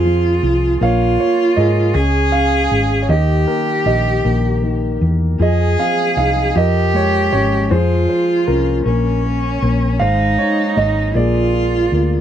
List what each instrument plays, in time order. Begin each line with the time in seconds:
Already playing: fingered electric bass F2, grand piano F3 C4 G#4, cello F4
0.05 grand piano F3
0.43 fingered electric bass C2, grand piano F3
0.81 fingered electric bass A#1, grand piano A#3 C#5 F5, cello F4
1.19 grand piano F4 C#5
1.57 fingered electric bass G#2, grand piano A#3 G#4 D#5
1.94 fingered electric bass C#2, grand piano C#4, cello G#4
2.32 grand piano C#4 F5
2.71 fingered electric bass G#1, grand piano C#4
3.02 grand piano C#5
3.09 fingered electric bass D#2, grand piano D#3 G4 D#5, cello G4
3.47 grand piano A#3 A#4
3.86 fingered electric bass A#1, grand piano D#3 G4 D#5
4.25 fingered electric bass A#1, grand piano A#3
4.63 grand piano D#3
5.01 fingered electric bass E2, grand piano A#3
5.40 fingered electric bass F2, grand piano F3 G#4 D#5, cello G#4
5.79 grand piano C4 F5
6.17 fingered electric bass C2, grand piano D#4 F5
6.55 fingered electric bass F2, grand piano F3 A#4 D#5, cello G4
6.94 grand piano G#3 C#5
7.32 fingered electric bass G#1, grand piano C#4 C#5
7.71 fingered electric bass F2, grand piano F3 G#4 C5, cello F4
8.09 grand piano C5
8.47 fingered electric bass C2, grand piano F3 C#4 A#4
8.85 fingered electric bass A#1, grand piano A#3, cello C#4
9.25 grand piano A#3
9.62 fingered electric bass A#1, grand piano A#3
10.00 fingered electric bass G#1, grand piano G#3 C5 F5, cello D#4
10.39 grand piano D#4 C#5
10.76 fingered electric bass G#1, grand piano G#3 D#5
11.14 fingered electric bass A#1, grand piano A#3 G#4 D5, cello F4
11.54 grand piano F4
11.92 fingered electric bass D2, grand piano A#3